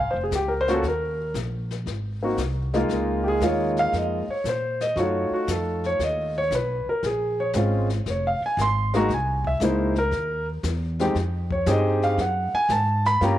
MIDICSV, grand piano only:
0, 0, Header, 1, 2, 480
1, 0, Start_track
1, 0, Key_signature, -4, "minor"
1, 0, Tempo, 515464
1, 778, Time_signature, 4, 2, 24, 8
1, 12464, End_track
2, 0, Start_track
2, 0, Title_t, "Grand piano"
2, 0, Program_c, 0, 0
2, 0, Note_on_c, 0, 77, 81
2, 99, Note_on_c, 0, 72, 78
2, 143, Note_off_c, 0, 77, 0
2, 195, Note_off_c, 0, 72, 0
2, 219, Note_on_c, 0, 68, 69
2, 293, Note_off_c, 0, 68, 0
2, 329, Note_on_c, 0, 67, 74
2, 449, Note_on_c, 0, 70, 68
2, 475, Note_off_c, 0, 67, 0
2, 565, Note_on_c, 0, 72, 105
2, 617, Note_off_c, 0, 70, 0
2, 635, Note_on_c, 0, 58, 73
2, 637, Note_on_c, 0, 61, 76
2, 643, Note_on_c, 0, 65, 67
2, 647, Note_on_c, 0, 66, 90
2, 669, Note_off_c, 0, 72, 0
2, 688, Note_on_c, 0, 69, 78
2, 766, Note_off_c, 0, 58, 0
2, 767, Note_off_c, 0, 61, 0
2, 768, Note_off_c, 0, 69, 0
2, 770, Note_off_c, 0, 65, 0
2, 772, Note_off_c, 0, 66, 0
2, 819, Note_on_c, 0, 70, 74
2, 1247, Note_off_c, 0, 70, 0
2, 2072, Note_on_c, 0, 58, 65
2, 2074, Note_on_c, 0, 60, 54
2, 2082, Note_on_c, 0, 63, 52
2, 2087, Note_on_c, 0, 66, 74
2, 2206, Note_off_c, 0, 58, 0
2, 2207, Note_off_c, 0, 60, 0
2, 2211, Note_off_c, 0, 63, 0
2, 2213, Note_off_c, 0, 66, 0
2, 2549, Note_on_c, 0, 56, 80
2, 2551, Note_on_c, 0, 58, 78
2, 2557, Note_on_c, 0, 63, 69
2, 2567, Note_on_c, 0, 65, 81
2, 3015, Note_on_c, 0, 67, 65
2, 3032, Note_off_c, 0, 67, 0
2, 3055, Note_on_c, 0, 68, 93
2, 3150, Note_off_c, 0, 56, 0
2, 3151, Note_off_c, 0, 58, 0
2, 3154, Note_off_c, 0, 63, 0
2, 3159, Note_off_c, 0, 65, 0
2, 3181, Note_on_c, 0, 56, 71
2, 3183, Note_on_c, 0, 58, 57
2, 3187, Note_on_c, 0, 63, 57
2, 3188, Note_off_c, 0, 68, 0
2, 3192, Note_on_c, 0, 65, 82
2, 3214, Note_on_c, 0, 73, 76
2, 3519, Note_off_c, 0, 73, 0
2, 3532, Note_on_c, 0, 77, 118
2, 3667, Note_off_c, 0, 77, 0
2, 3692, Note_on_c, 0, 75, 70
2, 3927, Note_off_c, 0, 56, 0
2, 3928, Note_off_c, 0, 58, 0
2, 3929, Note_off_c, 0, 63, 0
2, 3932, Note_off_c, 0, 65, 0
2, 3998, Note_off_c, 0, 75, 0
2, 4009, Note_on_c, 0, 73, 83
2, 4146, Note_off_c, 0, 73, 0
2, 4179, Note_on_c, 0, 72, 79
2, 4482, Note_off_c, 0, 72, 0
2, 4482, Note_on_c, 0, 75, 92
2, 4622, Note_off_c, 0, 75, 0
2, 4624, Note_on_c, 0, 66, 66
2, 4634, Note_on_c, 0, 57, 57
2, 4638, Note_on_c, 0, 63, 54
2, 4643, Note_on_c, 0, 65, 64
2, 4650, Note_on_c, 0, 73, 75
2, 4954, Note_off_c, 0, 66, 0
2, 4958, Note_off_c, 0, 73, 0
2, 4968, Note_on_c, 0, 66, 73
2, 5105, Note_off_c, 0, 66, 0
2, 5130, Note_on_c, 0, 69, 74
2, 5438, Note_off_c, 0, 69, 0
2, 5460, Note_on_c, 0, 73, 95
2, 5591, Note_off_c, 0, 73, 0
2, 5621, Note_on_c, 0, 75, 78
2, 5924, Note_off_c, 0, 75, 0
2, 5939, Note_on_c, 0, 73, 98
2, 5979, Note_off_c, 0, 57, 0
2, 5982, Note_off_c, 0, 63, 0
2, 5984, Note_off_c, 0, 65, 0
2, 6071, Note_off_c, 0, 73, 0
2, 6098, Note_on_c, 0, 71, 72
2, 6402, Note_off_c, 0, 71, 0
2, 6417, Note_on_c, 0, 70, 75
2, 6551, Note_off_c, 0, 70, 0
2, 6571, Note_on_c, 0, 68, 72
2, 6879, Note_off_c, 0, 68, 0
2, 6891, Note_on_c, 0, 73, 84
2, 6976, Note_off_c, 0, 73, 0
2, 7029, Note_on_c, 0, 56, 63
2, 7035, Note_on_c, 0, 60, 61
2, 7042, Note_on_c, 0, 61, 56
2, 7048, Note_on_c, 0, 65, 69
2, 7324, Note_off_c, 0, 56, 0
2, 7327, Note_off_c, 0, 60, 0
2, 7331, Note_off_c, 0, 61, 0
2, 7334, Note_off_c, 0, 65, 0
2, 7542, Note_on_c, 0, 73, 75
2, 7679, Note_off_c, 0, 73, 0
2, 7702, Note_on_c, 0, 77, 85
2, 7838, Note_off_c, 0, 77, 0
2, 7876, Note_on_c, 0, 80, 85
2, 8006, Note_off_c, 0, 80, 0
2, 8022, Note_on_c, 0, 84, 106
2, 8322, Note_on_c, 0, 56, 86
2, 8325, Note_off_c, 0, 84, 0
2, 8329, Note_on_c, 0, 58, 77
2, 8334, Note_on_c, 0, 63, 74
2, 8344, Note_on_c, 0, 66, 97
2, 8345, Note_on_c, 0, 82, 91
2, 8452, Note_off_c, 0, 56, 0
2, 8456, Note_off_c, 0, 58, 0
2, 8458, Note_off_c, 0, 63, 0
2, 8463, Note_off_c, 0, 66, 0
2, 8475, Note_off_c, 0, 82, 0
2, 8511, Note_on_c, 0, 80, 83
2, 8809, Note_off_c, 0, 80, 0
2, 8819, Note_on_c, 0, 76, 89
2, 8950, Note_on_c, 0, 56, 70
2, 8951, Note_off_c, 0, 76, 0
2, 8953, Note_on_c, 0, 58, 64
2, 8962, Note_on_c, 0, 63, 70
2, 8965, Note_on_c, 0, 64, 78
2, 8974, Note_on_c, 0, 72, 77
2, 9245, Note_off_c, 0, 56, 0
2, 9246, Note_off_c, 0, 58, 0
2, 9251, Note_off_c, 0, 63, 0
2, 9252, Note_off_c, 0, 64, 0
2, 9280, Note_off_c, 0, 72, 0
2, 9297, Note_on_c, 0, 70, 92
2, 9733, Note_off_c, 0, 70, 0
2, 10244, Note_on_c, 0, 56, 79
2, 10244, Note_on_c, 0, 60, 67
2, 10252, Note_on_c, 0, 63, 69
2, 10256, Note_on_c, 0, 67, 82
2, 10373, Note_off_c, 0, 56, 0
2, 10373, Note_off_c, 0, 60, 0
2, 10377, Note_off_c, 0, 63, 0
2, 10379, Note_off_c, 0, 67, 0
2, 10729, Note_on_c, 0, 73, 81
2, 10866, Note_off_c, 0, 73, 0
2, 10866, Note_on_c, 0, 68, 85
2, 10875, Note_on_c, 0, 60, 73
2, 10880, Note_on_c, 0, 63, 69
2, 10884, Note_on_c, 0, 67, 86
2, 10896, Note_on_c, 0, 75, 86
2, 11201, Note_off_c, 0, 75, 0
2, 11208, Note_on_c, 0, 77, 96
2, 11344, Note_off_c, 0, 68, 0
2, 11345, Note_off_c, 0, 77, 0
2, 11348, Note_off_c, 0, 60, 0
2, 11351, Note_off_c, 0, 63, 0
2, 11353, Note_off_c, 0, 67, 0
2, 11372, Note_on_c, 0, 78, 75
2, 11679, Note_off_c, 0, 78, 0
2, 11684, Note_on_c, 0, 80, 107
2, 11823, Note_off_c, 0, 80, 0
2, 11840, Note_on_c, 0, 81, 93
2, 12152, Note_off_c, 0, 81, 0
2, 12165, Note_on_c, 0, 83, 117
2, 12302, Note_on_c, 0, 58, 76
2, 12304, Note_off_c, 0, 83, 0
2, 12309, Note_on_c, 0, 65, 72
2, 12311, Note_on_c, 0, 61, 67
2, 12319, Note_on_c, 0, 67, 81
2, 12330, Note_on_c, 0, 82, 82
2, 12464, Note_off_c, 0, 58, 0
2, 12464, Note_off_c, 0, 61, 0
2, 12464, Note_off_c, 0, 65, 0
2, 12464, Note_off_c, 0, 67, 0
2, 12464, Note_off_c, 0, 82, 0
2, 12464, End_track
0, 0, End_of_file